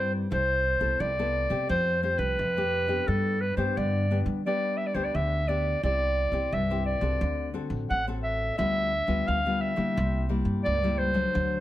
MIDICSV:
0, 0, Header, 1, 4, 480
1, 0, Start_track
1, 0, Key_signature, 0, "major"
1, 0, Tempo, 689655
1, 221, Time_signature, 4, 2, 24, 8
1, 8075, End_track
2, 0, Start_track
2, 0, Title_t, "Clarinet"
2, 0, Program_c, 0, 71
2, 0, Note_on_c, 0, 72, 85
2, 86, Note_off_c, 0, 72, 0
2, 225, Note_on_c, 0, 72, 103
2, 699, Note_on_c, 0, 74, 91
2, 709, Note_off_c, 0, 72, 0
2, 1177, Note_off_c, 0, 74, 0
2, 1181, Note_on_c, 0, 72, 98
2, 1405, Note_off_c, 0, 72, 0
2, 1411, Note_on_c, 0, 72, 87
2, 1522, Note_on_c, 0, 71, 91
2, 1532, Note_off_c, 0, 72, 0
2, 2142, Note_on_c, 0, 69, 86
2, 2153, Note_off_c, 0, 71, 0
2, 2372, Note_on_c, 0, 71, 81
2, 2383, Note_off_c, 0, 69, 0
2, 2480, Note_off_c, 0, 71, 0
2, 2484, Note_on_c, 0, 72, 78
2, 2626, Note_on_c, 0, 74, 80
2, 2637, Note_off_c, 0, 72, 0
2, 2917, Note_off_c, 0, 74, 0
2, 3109, Note_on_c, 0, 74, 101
2, 3321, Note_on_c, 0, 76, 82
2, 3331, Note_off_c, 0, 74, 0
2, 3385, Note_on_c, 0, 74, 83
2, 3396, Note_off_c, 0, 76, 0
2, 3445, Note_on_c, 0, 72, 81
2, 3455, Note_off_c, 0, 74, 0
2, 3510, Note_on_c, 0, 74, 81
2, 3521, Note_off_c, 0, 72, 0
2, 3585, Note_on_c, 0, 76, 91
2, 3595, Note_off_c, 0, 74, 0
2, 3812, Note_on_c, 0, 74, 94
2, 3822, Note_off_c, 0, 76, 0
2, 4057, Note_off_c, 0, 74, 0
2, 4065, Note_on_c, 0, 74, 108
2, 4545, Note_on_c, 0, 76, 89
2, 4555, Note_off_c, 0, 74, 0
2, 4770, Note_off_c, 0, 76, 0
2, 4774, Note_on_c, 0, 74, 87
2, 5230, Note_off_c, 0, 74, 0
2, 5500, Note_on_c, 0, 78, 96
2, 5608, Note_off_c, 0, 78, 0
2, 5730, Note_on_c, 0, 76, 91
2, 5958, Note_off_c, 0, 76, 0
2, 5971, Note_on_c, 0, 76, 104
2, 6455, Note_on_c, 0, 77, 93
2, 6466, Note_off_c, 0, 76, 0
2, 6690, Note_on_c, 0, 76, 82
2, 6700, Note_off_c, 0, 77, 0
2, 7175, Note_off_c, 0, 76, 0
2, 7406, Note_on_c, 0, 74, 107
2, 7647, Note_on_c, 0, 72, 94
2, 7658, Note_off_c, 0, 74, 0
2, 8075, Note_off_c, 0, 72, 0
2, 8075, End_track
3, 0, Start_track
3, 0, Title_t, "Nylon-string guitar"
3, 0, Program_c, 1, 24
3, 0, Note_on_c, 1, 43, 51
3, 0, Note_on_c, 1, 55, 54
3, 0, Note_on_c, 1, 60, 62
3, 0, Note_on_c, 1, 64, 63
3, 181, Note_off_c, 1, 55, 0
3, 183, Note_off_c, 1, 60, 0
3, 185, Note_off_c, 1, 64, 0
3, 194, Note_off_c, 1, 43, 0
3, 212, Note_on_c, 1, 48, 55
3, 215, Note_on_c, 1, 64, 62
3, 218, Note_on_c, 1, 69, 59
3, 444, Note_off_c, 1, 64, 0
3, 445, Note_off_c, 1, 69, 0
3, 558, Note_on_c, 1, 59, 62
3, 561, Note_on_c, 1, 64, 57
3, 563, Note_on_c, 1, 69, 74
3, 673, Note_off_c, 1, 48, 0
3, 704, Note_on_c, 1, 48, 53
3, 772, Note_off_c, 1, 59, 0
3, 773, Note_off_c, 1, 64, 0
3, 774, Note_off_c, 1, 69, 0
3, 828, Note_on_c, 1, 59, 60
3, 831, Note_on_c, 1, 64, 56
3, 831, Note_on_c, 1, 69, 70
3, 1027, Note_off_c, 1, 59, 0
3, 1028, Note_off_c, 1, 64, 0
3, 1028, Note_off_c, 1, 69, 0
3, 1043, Note_on_c, 1, 57, 61
3, 1047, Note_on_c, 1, 60, 60
3, 1050, Note_on_c, 1, 67, 69
3, 1159, Note_off_c, 1, 48, 0
3, 1181, Note_on_c, 1, 53, 58
3, 1375, Note_off_c, 1, 57, 0
3, 1376, Note_off_c, 1, 60, 0
3, 1378, Note_off_c, 1, 67, 0
3, 1409, Note_on_c, 1, 57, 51
3, 1413, Note_on_c, 1, 60, 52
3, 1416, Note_on_c, 1, 67, 69
3, 1638, Note_off_c, 1, 53, 0
3, 1641, Note_off_c, 1, 57, 0
3, 1643, Note_off_c, 1, 60, 0
3, 1644, Note_off_c, 1, 67, 0
3, 1667, Note_on_c, 1, 48, 54
3, 1789, Note_on_c, 1, 57, 59
3, 1793, Note_on_c, 1, 60, 58
3, 1794, Note_on_c, 1, 67, 70
3, 1988, Note_off_c, 1, 57, 0
3, 1989, Note_off_c, 1, 60, 0
3, 1990, Note_off_c, 1, 67, 0
3, 2003, Note_on_c, 1, 59, 61
3, 2005, Note_on_c, 1, 62, 65
3, 2010, Note_on_c, 1, 67, 72
3, 2121, Note_off_c, 1, 48, 0
3, 2143, Note_on_c, 1, 55, 58
3, 2454, Note_off_c, 1, 59, 0
3, 2456, Note_off_c, 1, 62, 0
3, 2457, Note_off_c, 1, 67, 0
3, 2486, Note_on_c, 1, 59, 64
3, 2489, Note_on_c, 1, 62, 63
3, 2493, Note_on_c, 1, 67, 66
3, 2599, Note_off_c, 1, 55, 0
3, 2625, Note_on_c, 1, 50, 56
3, 2816, Note_off_c, 1, 59, 0
3, 2818, Note_off_c, 1, 62, 0
3, 2819, Note_off_c, 1, 67, 0
3, 2858, Note_on_c, 1, 59, 51
3, 2861, Note_on_c, 1, 62, 53
3, 2864, Note_on_c, 1, 67, 65
3, 3062, Note_off_c, 1, 59, 0
3, 3063, Note_off_c, 1, 62, 0
3, 3065, Note_off_c, 1, 67, 0
3, 3080, Note_off_c, 1, 50, 0
3, 3105, Note_on_c, 1, 55, 58
3, 3108, Note_on_c, 1, 59, 52
3, 3110, Note_on_c, 1, 62, 54
3, 3112, Note_on_c, 1, 67, 55
3, 3427, Note_off_c, 1, 59, 0
3, 3428, Note_off_c, 1, 62, 0
3, 3429, Note_off_c, 1, 67, 0
3, 3445, Note_on_c, 1, 59, 51
3, 3449, Note_on_c, 1, 62, 54
3, 3452, Note_on_c, 1, 67, 58
3, 3560, Note_off_c, 1, 55, 0
3, 3585, Note_on_c, 1, 50, 51
3, 3775, Note_off_c, 1, 59, 0
3, 3777, Note_off_c, 1, 62, 0
3, 3779, Note_off_c, 1, 67, 0
3, 3815, Note_on_c, 1, 59, 53
3, 3816, Note_on_c, 1, 62, 54
3, 3821, Note_on_c, 1, 67, 56
3, 4020, Note_off_c, 1, 62, 0
3, 4021, Note_off_c, 1, 59, 0
3, 4023, Note_off_c, 1, 67, 0
3, 4040, Note_off_c, 1, 50, 0
3, 4059, Note_on_c, 1, 48, 55
3, 4063, Note_on_c, 1, 60, 52
3, 4065, Note_on_c, 1, 67, 61
3, 4067, Note_on_c, 1, 64, 54
3, 4384, Note_off_c, 1, 60, 0
3, 4384, Note_off_c, 1, 64, 0
3, 4385, Note_off_c, 1, 67, 0
3, 4403, Note_on_c, 1, 60, 63
3, 4406, Note_on_c, 1, 64, 63
3, 4407, Note_on_c, 1, 67, 60
3, 4518, Note_off_c, 1, 48, 0
3, 4545, Note_on_c, 1, 43, 58
3, 4615, Note_off_c, 1, 60, 0
3, 4615, Note_off_c, 1, 64, 0
3, 4616, Note_off_c, 1, 67, 0
3, 4665, Note_on_c, 1, 60, 62
3, 4669, Note_on_c, 1, 64, 63
3, 4673, Note_on_c, 1, 67, 69
3, 4865, Note_off_c, 1, 60, 0
3, 4867, Note_off_c, 1, 64, 0
3, 4869, Note_off_c, 1, 67, 0
3, 4883, Note_on_c, 1, 60, 62
3, 4887, Note_on_c, 1, 66, 51
3, 4892, Note_on_c, 1, 69, 60
3, 4999, Note_off_c, 1, 43, 0
3, 5020, Note_on_c, 1, 50, 54
3, 5214, Note_off_c, 1, 60, 0
3, 5216, Note_off_c, 1, 66, 0
3, 5218, Note_off_c, 1, 69, 0
3, 5245, Note_on_c, 1, 60, 54
3, 5248, Note_on_c, 1, 66, 52
3, 5253, Note_on_c, 1, 69, 60
3, 5477, Note_off_c, 1, 50, 0
3, 5495, Note_on_c, 1, 45, 52
3, 5575, Note_off_c, 1, 60, 0
3, 5577, Note_off_c, 1, 66, 0
3, 5578, Note_off_c, 1, 69, 0
3, 5620, Note_on_c, 1, 60, 59
3, 5623, Note_on_c, 1, 66, 56
3, 5629, Note_on_c, 1, 69, 64
3, 5942, Note_off_c, 1, 60, 0
3, 5943, Note_off_c, 1, 66, 0
3, 5946, Note_off_c, 1, 69, 0
3, 5954, Note_off_c, 1, 45, 0
3, 5968, Note_on_c, 1, 50, 55
3, 5972, Note_on_c, 1, 55, 51
3, 5972, Note_on_c, 1, 59, 54
3, 5975, Note_on_c, 1, 65, 58
3, 6201, Note_off_c, 1, 55, 0
3, 6201, Note_off_c, 1, 59, 0
3, 6203, Note_off_c, 1, 65, 0
3, 6313, Note_on_c, 1, 55, 63
3, 6318, Note_on_c, 1, 59, 64
3, 6320, Note_on_c, 1, 65, 68
3, 6430, Note_off_c, 1, 50, 0
3, 6451, Note_on_c, 1, 50, 51
3, 6528, Note_off_c, 1, 55, 0
3, 6531, Note_off_c, 1, 59, 0
3, 6531, Note_off_c, 1, 65, 0
3, 6582, Note_on_c, 1, 55, 61
3, 6585, Note_on_c, 1, 59, 57
3, 6589, Note_on_c, 1, 65, 73
3, 6783, Note_off_c, 1, 55, 0
3, 6783, Note_off_c, 1, 59, 0
3, 6786, Note_off_c, 1, 65, 0
3, 6794, Note_on_c, 1, 55, 64
3, 6798, Note_on_c, 1, 58, 57
3, 6798, Note_on_c, 1, 64, 65
3, 6911, Note_off_c, 1, 50, 0
3, 6935, Note_on_c, 1, 48, 60
3, 7129, Note_off_c, 1, 55, 0
3, 7130, Note_off_c, 1, 58, 0
3, 7130, Note_off_c, 1, 64, 0
3, 7162, Note_on_c, 1, 55, 53
3, 7164, Note_on_c, 1, 58, 58
3, 7169, Note_on_c, 1, 64, 63
3, 7393, Note_off_c, 1, 48, 0
3, 7413, Note_on_c, 1, 43, 55
3, 7492, Note_off_c, 1, 55, 0
3, 7493, Note_off_c, 1, 58, 0
3, 7496, Note_off_c, 1, 64, 0
3, 7542, Note_on_c, 1, 55, 68
3, 7546, Note_on_c, 1, 58, 62
3, 7549, Note_on_c, 1, 64, 62
3, 7742, Note_off_c, 1, 55, 0
3, 7743, Note_off_c, 1, 58, 0
3, 7746, Note_off_c, 1, 64, 0
3, 7752, Note_on_c, 1, 54, 68
3, 7756, Note_on_c, 1, 57, 67
3, 7758, Note_on_c, 1, 62, 64
3, 7872, Note_off_c, 1, 43, 0
3, 7889, Note_on_c, 1, 50, 54
3, 8075, Note_off_c, 1, 50, 0
3, 8075, Note_off_c, 1, 54, 0
3, 8075, Note_off_c, 1, 57, 0
3, 8075, Note_off_c, 1, 62, 0
3, 8075, End_track
4, 0, Start_track
4, 0, Title_t, "Upright bass"
4, 0, Program_c, 2, 32
4, 0, Note_on_c, 2, 43, 87
4, 150, Note_off_c, 2, 43, 0
4, 220, Note_on_c, 2, 36, 98
4, 527, Note_off_c, 2, 36, 0
4, 561, Note_on_c, 2, 36, 71
4, 672, Note_off_c, 2, 36, 0
4, 697, Note_on_c, 2, 36, 94
4, 1005, Note_off_c, 2, 36, 0
4, 1043, Note_on_c, 2, 48, 83
4, 1153, Note_off_c, 2, 48, 0
4, 1179, Note_on_c, 2, 41, 93
4, 1487, Note_off_c, 2, 41, 0
4, 1521, Note_on_c, 2, 36, 81
4, 1632, Note_off_c, 2, 36, 0
4, 1664, Note_on_c, 2, 41, 83
4, 2072, Note_off_c, 2, 41, 0
4, 2142, Note_on_c, 2, 43, 88
4, 2448, Note_off_c, 2, 43, 0
4, 2484, Note_on_c, 2, 43, 76
4, 2594, Note_off_c, 2, 43, 0
4, 2625, Note_on_c, 2, 43, 89
4, 2930, Note_off_c, 2, 43, 0
4, 2963, Note_on_c, 2, 55, 82
4, 3379, Note_off_c, 2, 55, 0
4, 3441, Note_on_c, 2, 38, 75
4, 3552, Note_off_c, 2, 38, 0
4, 3581, Note_on_c, 2, 38, 81
4, 3990, Note_off_c, 2, 38, 0
4, 4060, Note_on_c, 2, 36, 92
4, 4367, Note_off_c, 2, 36, 0
4, 4396, Note_on_c, 2, 36, 69
4, 4509, Note_off_c, 2, 36, 0
4, 4541, Note_on_c, 2, 36, 88
4, 4847, Note_off_c, 2, 36, 0
4, 4880, Note_on_c, 2, 36, 81
4, 4991, Note_off_c, 2, 36, 0
4, 5018, Note_on_c, 2, 38, 94
4, 5325, Note_off_c, 2, 38, 0
4, 5359, Note_on_c, 2, 33, 83
4, 5470, Note_off_c, 2, 33, 0
4, 5501, Note_on_c, 2, 33, 83
4, 5909, Note_off_c, 2, 33, 0
4, 5976, Note_on_c, 2, 38, 92
4, 6284, Note_off_c, 2, 38, 0
4, 6318, Note_on_c, 2, 38, 75
4, 6430, Note_off_c, 2, 38, 0
4, 6459, Note_on_c, 2, 38, 86
4, 6765, Note_off_c, 2, 38, 0
4, 6801, Note_on_c, 2, 50, 75
4, 6911, Note_off_c, 2, 50, 0
4, 6942, Note_on_c, 2, 36, 98
4, 7247, Note_off_c, 2, 36, 0
4, 7274, Note_on_c, 2, 43, 84
4, 7387, Note_off_c, 2, 43, 0
4, 7420, Note_on_c, 2, 37, 86
4, 7827, Note_off_c, 2, 37, 0
4, 7900, Note_on_c, 2, 38, 98
4, 8075, Note_off_c, 2, 38, 0
4, 8075, End_track
0, 0, End_of_file